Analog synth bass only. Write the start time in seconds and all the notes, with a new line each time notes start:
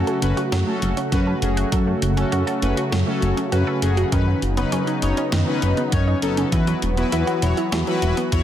0.22 F#1
0.52 F#2
0.82 F#1
1.12 F#2
1.42 F#1
1.72 F#2
2.02 F#1
2.32 F#2
2.62 F#1
2.92 F#2
3.22 F#1
3.52 F#2
3.82 F#1
4.12 F#2
4.42 F#1
4.72 F#2
5.02 F#1
5.32 F#2
5.62 F#1
5.92 F#2
6.22 F#1
6.52 E2
6.82 E1
7.12 E2
7.42 E1
7.72 E2
8.02 E1
8.32 E2